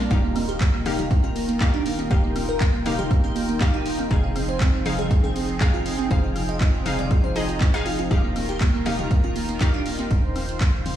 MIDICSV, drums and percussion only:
0, 0, Header, 1, 2, 480
1, 0, Start_track
1, 0, Key_signature, -3, "major"
1, 0, Tempo, 500000
1, 104, Time_signature, 4, 2, 24, 8
1, 10524, End_track
2, 0, Start_track
2, 0, Title_t, "Drums"
2, 103, Note_on_c, 9, 36, 119
2, 103, Note_on_c, 9, 42, 74
2, 199, Note_off_c, 9, 36, 0
2, 199, Note_off_c, 9, 42, 0
2, 342, Note_on_c, 9, 46, 112
2, 344, Note_on_c, 9, 63, 99
2, 344, Note_on_c, 9, 76, 63
2, 438, Note_off_c, 9, 46, 0
2, 440, Note_off_c, 9, 63, 0
2, 440, Note_off_c, 9, 76, 0
2, 469, Note_on_c, 9, 42, 55
2, 565, Note_off_c, 9, 42, 0
2, 582, Note_on_c, 9, 39, 125
2, 583, Note_on_c, 9, 36, 119
2, 583, Note_on_c, 9, 42, 72
2, 678, Note_off_c, 9, 39, 0
2, 679, Note_off_c, 9, 36, 0
2, 679, Note_off_c, 9, 42, 0
2, 709, Note_on_c, 9, 76, 66
2, 805, Note_off_c, 9, 76, 0
2, 823, Note_on_c, 9, 46, 104
2, 824, Note_on_c, 9, 47, 90
2, 824, Note_on_c, 9, 63, 69
2, 919, Note_off_c, 9, 46, 0
2, 920, Note_off_c, 9, 47, 0
2, 920, Note_off_c, 9, 63, 0
2, 949, Note_on_c, 9, 42, 54
2, 949, Note_on_c, 9, 47, 91
2, 1045, Note_off_c, 9, 42, 0
2, 1045, Note_off_c, 9, 47, 0
2, 1063, Note_on_c, 9, 36, 116
2, 1063, Note_on_c, 9, 42, 70
2, 1159, Note_off_c, 9, 36, 0
2, 1159, Note_off_c, 9, 42, 0
2, 1188, Note_on_c, 9, 42, 41
2, 1188, Note_on_c, 9, 63, 94
2, 1284, Note_off_c, 9, 42, 0
2, 1284, Note_off_c, 9, 63, 0
2, 1303, Note_on_c, 9, 46, 109
2, 1399, Note_off_c, 9, 46, 0
2, 1428, Note_on_c, 9, 42, 54
2, 1524, Note_off_c, 9, 42, 0
2, 1541, Note_on_c, 9, 39, 127
2, 1542, Note_on_c, 9, 42, 69
2, 1543, Note_on_c, 9, 36, 113
2, 1544, Note_on_c, 9, 63, 73
2, 1637, Note_off_c, 9, 39, 0
2, 1638, Note_off_c, 9, 42, 0
2, 1639, Note_off_c, 9, 36, 0
2, 1640, Note_off_c, 9, 63, 0
2, 1668, Note_on_c, 9, 42, 37
2, 1764, Note_off_c, 9, 42, 0
2, 1783, Note_on_c, 9, 46, 108
2, 1879, Note_off_c, 9, 46, 0
2, 1908, Note_on_c, 9, 42, 54
2, 1909, Note_on_c, 9, 63, 99
2, 2004, Note_off_c, 9, 42, 0
2, 2005, Note_off_c, 9, 63, 0
2, 2023, Note_on_c, 9, 36, 127
2, 2023, Note_on_c, 9, 42, 66
2, 2119, Note_off_c, 9, 36, 0
2, 2119, Note_off_c, 9, 42, 0
2, 2263, Note_on_c, 9, 46, 119
2, 2264, Note_on_c, 9, 63, 94
2, 2264, Note_on_c, 9, 76, 62
2, 2359, Note_off_c, 9, 46, 0
2, 2360, Note_off_c, 9, 63, 0
2, 2360, Note_off_c, 9, 76, 0
2, 2389, Note_on_c, 9, 42, 54
2, 2485, Note_off_c, 9, 42, 0
2, 2501, Note_on_c, 9, 39, 127
2, 2503, Note_on_c, 9, 36, 122
2, 2503, Note_on_c, 9, 42, 68
2, 2597, Note_off_c, 9, 39, 0
2, 2599, Note_off_c, 9, 36, 0
2, 2599, Note_off_c, 9, 42, 0
2, 2743, Note_on_c, 9, 46, 109
2, 2745, Note_on_c, 9, 47, 99
2, 2745, Note_on_c, 9, 63, 66
2, 2839, Note_off_c, 9, 46, 0
2, 2841, Note_off_c, 9, 47, 0
2, 2841, Note_off_c, 9, 63, 0
2, 2868, Note_on_c, 9, 42, 54
2, 2869, Note_on_c, 9, 47, 99
2, 2964, Note_off_c, 9, 42, 0
2, 2965, Note_off_c, 9, 47, 0
2, 2983, Note_on_c, 9, 36, 120
2, 2983, Note_on_c, 9, 42, 66
2, 2983, Note_on_c, 9, 76, 71
2, 3079, Note_off_c, 9, 36, 0
2, 3079, Note_off_c, 9, 42, 0
2, 3079, Note_off_c, 9, 76, 0
2, 3109, Note_on_c, 9, 42, 39
2, 3109, Note_on_c, 9, 63, 93
2, 3205, Note_off_c, 9, 42, 0
2, 3205, Note_off_c, 9, 63, 0
2, 3223, Note_on_c, 9, 46, 119
2, 3319, Note_off_c, 9, 46, 0
2, 3349, Note_on_c, 9, 42, 52
2, 3445, Note_off_c, 9, 42, 0
2, 3462, Note_on_c, 9, 39, 123
2, 3463, Note_on_c, 9, 36, 127
2, 3463, Note_on_c, 9, 42, 68
2, 3463, Note_on_c, 9, 63, 70
2, 3558, Note_off_c, 9, 39, 0
2, 3559, Note_off_c, 9, 36, 0
2, 3559, Note_off_c, 9, 42, 0
2, 3559, Note_off_c, 9, 63, 0
2, 3588, Note_on_c, 9, 42, 36
2, 3684, Note_off_c, 9, 42, 0
2, 3702, Note_on_c, 9, 46, 109
2, 3798, Note_off_c, 9, 46, 0
2, 3829, Note_on_c, 9, 42, 54
2, 3829, Note_on_c, 9, 63, 96
2, 3925, Note_off_c, 9, 42, 0
2, 3925, Note_off_c, 9, 63, 0
2, 3943, Note_on_c, 9, 36, 122
2, 3943, Note_on_c, 9, 42, 68
2, 4039, Note_off_c, 9, 36, 0
2, 4039, Note_off_c, 9, 42, 0
2, 4183, Note_on_c, 9, 46, 114
2, 4183, Note_on_c, 9, 63, 89
2, 4183, Note_on_c, 9, 76, 63
2, 4279, Note_off_c, 9, 46, 0
2, 4279, Note_off_c, 9, 63, 0
2, 4279, Note_off_c, 9, 76, 0
2, 4308, Note_on_c, 9, 42, 52
2, 4404, Note_off_c, 9, 42, 0
2, 4421, Note_on_c, 9, 39, 127
2, 4422, Note_on_c, 9, 42, 67
2, 4423, Note_on_c, 9, 36, 125
2, 4517, Note_off_c, 9, 39, 0
2, 4518, Note_off_c, 9, 42, 0
2, 4519, Note_off_c, 9, 36, 0
2, 4549, Note_on_c, 9, 76, 61
2, 4645, Note_off_c, 9, 76, 0
2, 4662, Note_on_c, 9, 46, 109
2, 4663, Note_on_c, 9, 47, 99
2, 4663, Note_on_c, 9, 63, 67
2, 4758, Note_off_c, 9, 46, 0
2, 4759, Note_off_c, 9, 47, 0
2, 4759, Note_off_c, 9, 63, 0
2, 4788, Note_on_c, 9, 42, 53
2, 4788, Note_on_c, 9, 47, 96
2, 4884, Note_off_c, 9, 42, 0
2, 4884, Note_off_c, 9, 47, 0
2, 4903, Note_on_c, 9, 36, 126
2, 4903, Note_on_c, 9, 42, 65
2, 4999, Note_off_c, 9, 36, 0
2, 4999, Note_off_c, 9, 42, 0
2, 5027, Note_on_c, 9, 63, 91
2, 5029, Note_on_c, 9, 42, 37
2, 5123, Note_off_c, 9, 63, 0
2, 5125, Note_off_c, 9, 42, 0
2, 5143, Note_on_c, 9, 46, 111
2, 5239, Note_off_c, 9, 46, 0
2, 5269, Note_on_c, 9, 42, 53
2, 5365, Note_off_c, 9, 42, 0
2, 5382, Note_on_c, 9, 39, 126
2, 5383, Note_on_c, 9, 36, 127
2, 5383, Note_on_c, 9, 42, 69
2, 5383, Note_on_c, 9, 63, 66
2, 5478, Note_off_c, 9, 39, 0
2, 5479, Note_off_c, 9, 36, 0
2, 5479, Note_off_c, 9, 42, 0
2, 5479, Note_off_c, 9, 63, 0
2, 5509, Note_on_c, 9, 42, 35
2, 5605, Note_off_c, 9, 42, 0
2, 5623, Note_on_c, 9, 46, 116
2, 5719, Note_off_c, 9, 46, 0
2, 5748, Note_on_c, 9, 42, 50
2, 5749, Note_on_c, 9, 63, 94
2, 5844, Note_off_c, 9, 42, 0
2, 5845, Note_off_c, 9, 63, 0
2, 5863, Note_on_c, 9, 36, 127
2, 5863, Note_on_c, 9, 42, 65
2, 5959, Note_off_c, 9, 36, 0
2, 5959, Note_off_c, 9, 42, 0
2, 6103, Note_on_c, 9, 46, 116
2, 6103, Note_on_c, 9, 63, 88
2, 6103, Note_on_c, 9, 76, 58
2, 6199, Note_off_c, 9, 46, 0
2, 6199, Note_off_c, 9, 63, 0
2, 6199, Note_off_c, 9, 76, 0
2, 6229, Note_on_c, 9, 42, 49
2, 6325, Note_off_c, 9, 42, 0
2, 6342, Note_on_c, 9, 39, 115
2, 6343, Note_on_c, 9, 36, 126
2, 6343, Note_on_c, 9, 42, 64
2, 6438, Note_off_c, 9, 39, 0
2, 6439, Note_off_c, 9, 36, 0
2, 6439, Note_off_c, 9, 42, 0
2, 6583, Note_on_c, 9, 46, 108
2, 6584, Note_on_c, 9, 47, 94
2, 6584, Note_on_c, 9, 63, 61
2, 6679, Note_off_c, 9, 46, 0
2, 6680, Note_off_c, 9, 47, 0
2, 6680, Note_off_c, 9, 63, 0
2, 6709, Note_on_c, 9, 42, 50
2, 6709, Note_on_c, 9, 47, 92
2, 6805, Note_off_c, 9, 42, 0
2, 6805, Note_off_c, 9, 47, 0
2, 6823, Note_on_c, 9, 42, 61
2, 6824, Note_on_c, 9, 36, 121
2, 6824, Note_on_c, 9, 76, 62
2, 6919, Note_off_c, 9, 42, 0
2, 6920, Note_off_c, 9, 36, 0
2, 6920, Note_off_c, 9, 76, 0
2, 6949, Note_on_c, 9, 42, 38
2, 6949, Note_on_c, 9, 63, 88
2, 7045, Note_off_c, 9, 42, 0
2, 7045, Note_off_c, 9, 63, 0
2, 7063, Note_on_c, 9, 46, 116
2, 7159, Note_off_c, 9, 46, 0
2, 7189, Note_on_c, 9, 42, 51
2, 7285, Note_off_c, 9, 42, 0
2, 7302, Note_on_c, 9, 39, 122
2, 7303, Note_on_c, 9, 42, 65
2, 7304, Note_on_c, 9, 36, 126
2, 7305, Note_on_c, 9, 63, 66
2, 7398, Note_off_c, 9, 39, 0
2, 7399, Note_off_c, 9, 42, 0
2, 7400, Note_off_c, 9, 36, 0
2, 7401, Note_off_c, 9, 63, 0
2, 7429, Note_on_c, 9, 42, 35
2, 7525, Note_off_c, 9, 42, 0
2, 7543, Note_on_c, 9, 46, 107
2, 7639, Note_off_c, 9, 46, 0
2, 7669, Note_on_c, 9, 42, 51
2, 7671, Note_on_c, 9, 63, 92
2, 7765, Note_off_c, 9, 42, 0
2, 7767, Note_off_c, 9, 63, 0
2, 7784, Note_on_c, 9, 36, 123
2, 7784, Note_on_c, 9, 42, 64
2, 7880, Note_off_c, 9, 36, 0
2, 7880, Note_off_c, 9, 42, 0
2, 8024, Note_on_c, 9, 46, 110
2, 8026, Note_on_c, 9, 63, 87
2, 8026, Note_on_c, 9, 76, 58
2, 8120, Note_off_c, 9, 46, 0
2, 8122, Note_off_c, 9, 63, 0
2, 8122, Note_off_c, 9, 76, 0
2, 8150, Note_on_c, 9, 42, 51
2, 8246, Note_off_c, 9, 42, 0
2, 8262, Note_on_c, 9, 39, 120
2, 8263, Note_on_c, 9, 42, 65
2, 8264, Note_on_c, 9, 36, 116
2, 8358, Note_off_c, 9, 39, 0
2, 8359, Note_off_c, 9, 42, 0
2, 8360, Note_off_c, 9, 36, 0
2, 8390, Note_on_c, 9, 76, 59
2, 8486, Note_off_c, 9, 76, 0
2, 8503, Note_on_c, 9, 46, 104
2, 8505, Note_on_c, 9, 47, 95
2, 8505, Note_on_c, 9, 63, 66
2, 8599, Note_off_c, 9, 46, 0
2, 8601, Note_off_c, 9, 47, 0
2, 8601, Note_off_c, 9, 63, 0
2, 8628, Note_on_c, 9, 42, 53
2, 8630, Note_on_c, 9, 47, 98
2, 8724, Note_off_c, 9, 42, 0
2, 8726, Note_off_c, 9, 47, 0
2, 8744, Note_on_c, 9, 36, 115
2, 8744, Note_on_c, 9, 42, 66
2, 8840, Note_off_c, 9, 36, 0
2, 8840, Note_off_c, 9, 42, 0
2, 8868, Note_on_c, 9, 42, 37
2, 8869, Note_on_c, 9, 63, 91
2, 8964, Note_off_c, 9, 42, 0
2, 8965, Note_off_c, 9, 63, 0
2, 8983, Note_on_c, 9, 46, 114
2, 9079, Note_off_c, 9, 46, 0
2, 9109, Note_on_c, 9, 42, 50
2, 9205, Note_off_c, 9, 42, 0
2, 9222, Note_on_c, 9, 39, 117
2, 9223, Note_on_c, 9, 36, 118
2, 9223, Note_on_c, 9, 42, 64
2, 9224, Note_on_c, 9, 63, 66
2, 9318, Note_off_c, 9, 39, 0
2, 9319, Note_off_c, 9, 36, 0
2, 9319, Note_off_c, 9, 42, 0
2, 9320, Note_off_c, 9, 63, 0
2, 9349, Note_on_c, 9, 42, 35
2, 9445, Note_off_c, 9, 42, 0
2, 9462, Note_on_c, 9, 46, 108
2, 9558, Note_off_c, 9, 46, 0
2, 9588, Note_on_c, 9, 42, 49
2, 9589, Note_on_c, 9, 63, 91
2, 9684, Note_off_c, 9, 42, 0
2, 9685, Note_off_c, 9, 63, 0
2, 9702, Note_on_c, 9, 42, 69
2, 9703, Note_on_c, 9, 36, 115
2, 9798, Note_off_c, 9, 42, 0
2, 9799, Note_off_c, 9, 36, 0
2, 9943, Note_on_c, 9, 46, 107
2, 9943, Note_on_c, 9, 63, 88
2, 9943, Note_on_c, 9, 76, 57
2, 10039, Note_off_c, 9, 46, 0
2, 10039, Note_off_c, 9, 63, 0
2, 10039, Note_off_c, 9, 76, 0
2, 10068, Note_on_c, 9, 42, 51
2, 10164, Note_off_c, 9, 42, 0
2, 10182, Note_on_c, 9, 39, 117
2, 10183, Note_on_c, 9, 36, 114
2, 10183, Note_on_c, 9, 42, 69
2, 10278, Note_off_c, 9, 39, 0
2, 10279, Note_off_c, 9, 36, 0
2, 10279, Note_off_c, 9, 42, 0
2, 10423, Note_on_c, 9, 46, 97
2, 10424, Note_on_c, 9, 47, 88
2, 10424, Note_on_c, 9, 63, 68
2, 10519, Note_off_c, 9, 46, 0
2, 10520, Note_off_c, 9, 47, 0
2, 10520, Note_off_c, 9, 63, 0
2, 10524, End_track
0, 0, End_of_file